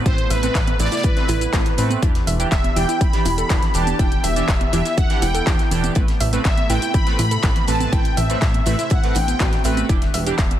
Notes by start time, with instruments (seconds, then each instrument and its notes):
Already playing: analog synth pad C3 A3 B3
0.06 analog synth bass A1, analog polysynth A2 A3 C4 B4, synth pluck E4, synth bell C5, supersaw synth C5, kick, closed hi-hat, shaker
0.18 closed hi-hat
0.30 analog synth bass A1, supersaw synth B4, synth bell B4, synth pluck E5, closed hi-hat, open hi-hat, low conga, shaker
0.43 analog polysynth A2 A3 C4 B4, closed hi-hat, shaker
0.55 analog synth bass A1, synth pluck E5, kick, snare, clap, closed hi-hat, shaker
0.67 closed hi-hat, high conga
0.79 analog synth bass A1, analog polysynth A2 A3 C4 B4, synth pluck E4, synth bell D5, supersaw synth D5, closed hi-hat, open hi-hat, low conga, shaker
0.85 snare, closed hi-hat
0.92 synth pluck E4, snare, closed hi-hat, shaker
0.97 snare, closed hi-hat
1.03 analog synth bass A1, synth pluck E4, synth bell B4, supersaw synth B4, kick, closed hi-hat, shaker
1.16 analog polysynth A2 A3 C4 B4, snare, closed hi-hat
1.28 analog synth bass A1, synth pluck E4, closed hi-hat, open hi-hat, high conga, low conga, shaker
1.41 synth pluck E4, closed hi-hat, shaker
1.53 analog synth bass A1, analog polysynth A2 A3 C4 B4, synth pluck E4, kick, snare, clap, closed hi-hat, shaker
1.64 snare, closed hi-hat
1.78 analog synth bass A1, analog polysynth A3 C4 B4, closed hi-hat, open hi-hat, shaker
1.90 closed hi-hat, high conga, shaker
2.02 analog synth bass E1, analog polysynth E3 D4 G4, analog synth pad E3 B3 D4 G4, synth pluck E4, kick, closed hi-hat, shaker
2.15 snare, closed hi-hat
2.27 analog synth bass E1, synth pluck E5, closed hi-hat, open hi-hat, shaker
2.39 analog polysynth E3 D4 G4, closed hi-hat, shaker
2.51 analog synth bass E1, synth pluck E5, synth bell E5, supersaw synth E5, kick, snare, clap, closed hi-hat, shaker
2.64 closed hi-hat, high conga
2.76 analog synth bass E1, analog polysynth E3 D4 G4, synth pluck E4, synth bell G5, supersaw synth G5, closed hi-hat, open hi-hat, shaker
2.89 synth pluck E4, closed hi-hat, shaker
3.01 analog synth bass E1, synth pluck E4, synth bell B5, supersaw synth B5, kick, closed hi-hat, shaker
3.13 analog polysynth E3 D4 G4, snare, closed hi-hat
3.25 analog synth bass E1, synth pluck E4, synth bell B5, supersaw synth B5, closed hi-hat, open hi-hat, high conga, low conga, shaker
3.38 synth pluck A4, closed hi-hat, shaker
3.50 analog synth bass E1, analog polysynth E3 D4 G4, synth pluck E4, kick, snare, clap, closed hi-hat, low conga, shaker
3.62 snare, closed hi-hat, low conga
3.74 analog synth bass E1, analog polysynth E3 D4 G4, synth bell A5, supersaw synth A5, closed hi-hat, open hi-hat, shaker
3.87 closed hi-hat, high conga, shaker
3.99 analog synth bass E1, analog polysynth E3 D4 G4, synth pluck E4, analog synth pad E4, supersaw synth G5, synth bell G5, kick, closed hi-hat, shaker
4.12 closed hi-hat
4.24 analog synth bass E1, synth pluck E5, synth bell E5, supersaw synth E5, closed hi-hat, open hi-hat, low conga, shaker
4.36 analog polysynth E3 D4 G4, closed hi-hat, shaker
4.48 analog synth bass E1, synth pluck E5, kick, snare, clap, closed hi-hat, shaker
4.61 closed hi-hat, high conga
4.73 analog synth bass E1, analog polysynth E3 D4 G4, synth pluck E4, synth bell E5, supersaw synth E5, closed hi-hat, open hi-hat, low conga, shaker
4.85 synth pluck E4, snare, closed hi-hat, shaker
4.97 analog synth bass E1, synth pluck E4, synth bell F#5, supersaw synth F#5, kick, closed hi-hat, shaker
5.10 analog polysynth E3 D4 G4, snare, closed hi-hat
5.22 analog synth bass E1, synth pluck E4, synth bell G5, supersaw synth G5, closed hi-hat, open hi-hat, high conga, low conga, shaker
5.34 synth pluck A4, closed hi-hat, shaker
5.47 analog synth bass E1, analog polysynth E3 D4 G4, synth pluck E4, kick, snare, clap, closed hi-hat, shaker
5.59 snare, closed hi-hat
5.71 analog synth bass E1, analog polysynth A2 E3 D4 G4, closed hi-hat, open hi-hat, shaker
5.84 closed hi-hat, high conga, shaker
5.95 analog synth bass A1, analog polysynth A2 A3 C4 B4, analog synth pad C3 A3, synth pluck E4, kick, closed hi-hat, shaker
6.08 snare, closed hi-hat
6.20 analog synth bass A1, synth pluck E5, closed hi-hat, open hi-hat, shaker
6.33 analog polysynth A2 A3 C4 B4, closed hi-hat, shaker
6.45 analog synth bass A1, synth bell E5, synth pluck E5, supersaw synth E5, kick, snare, clap, closed hi-hat, shaker
6.58 closed hi-hat, high conga
6.70 analog synth bass A1, analog polysynth A2 A3 C4 B4, synth pluck E4, synth bell G5, supersaw synth G5, closed hi-hat, open hi-hat, shaker
6.82 synth pluck E4, closed hi-hat, shaker
6.94 analog synth bass A1, synth pluck E4, supersaw synth B5, synth bell B5, kick, closed hi-hat, shaker
7.07 analog polysynth A2 A3 C4 B4, snare, closed hi-hat
7.19 analog synth bass A1, synth pluck E4, synth bell B5, supersaw synth B5, closed hi-hat, open hi-hat, high conga, low conga, shaker
7.31 synth pluck A4, closed hi-hat, shaker
7.43 analog synth bass A1, analog polysynth A2 A3 C4 B4, synth pluck E4, kick, snare, clap, closed hi-hat, low conga, shaker
7.55 snare, closed hi-hat, low conga
7.68 analog synth bass A1, analog polysynth A2 A3 C4 B4, synth bell A5, supersaw synth A5, closed hi-hat, open hi-hat, shaker
7.80 closed hi-hat, high conga, shaker
7.92 analog synth bass A1, analog polysynth A3 C4 B4, analog synth pad C4, synth pluck E4, synth bell G5, supersaw synth G5, kick, closed hi-hat, shaker
8.05 closed hi-hat
8.17 analog synth bass A1, synth pluck E5, synth bell E5, supersaw synth E5, closed hi-hat, open hi-hat, low conga, shaker
8.30 analog polysynth A2 A3 C4 B4, closed hi-hat, shaker
8.41 analog synth bass A1, synth pluck E5, kick, snare, clap, closed hi-hat, shaker
8.54 closed hi-hat, high conga
8.66 analog synth bass A1, analog polysynth A2 A3 C4 B4, synth pluck E4, synth bell E5, supersaw synth E5, closed hi-hat, open hi-hat, low conga, shaker
8.79 synth pluck E4, snare, closed hi-hat, shaker
8.90 analog synth bass A1, synth pluck E4, synth bell F#5, supersaw synth F#5, kick, closed hi-hat, shaker
9.03 analog polysynth A2 A3 C4 B4, snare, closed hi-hat
9.15 analog synth bass A1, synth pluck D4, synth bell G5, supersaw synth G5, closed hi-hat, open hi-hat, high conga, low conga, shaker
9.28 synth pluck B3, closed hi-hat, shaker
9.39 analog synth bass A1, analog polysynth A2 A3 C4 B4, synth pluck F#4, kick, snare, clap, closed hi-hat, shaker
9.53 snare, closed hi-hat
9.64 analog synth bass A1, analog polysynth A3 C4 B4, synth pluck E5, closed hi-hat, open hi-hat, shaker
9.77 closed hi-hat, high conga, shaker
9.89 analog synth bass E1, analog polysynth E3 D4 G4, analog synth pad E3 B3 D4 G4, synth pluck E4, kick, closed hi-hat, shaker
10.02 snare, closed hi-hat
10.14 analog synth bass E1, synth pluck E5, closed hi-hat, open hi-hat, shaker
10.26 analog polysynth E3 D4 G4, closed hi-hat, shaker
10.38 analog synth bass E1, synth pluck E5, kick, snare, clap, closed hi-hat, shaker
10.51 closed hi-hat, high conga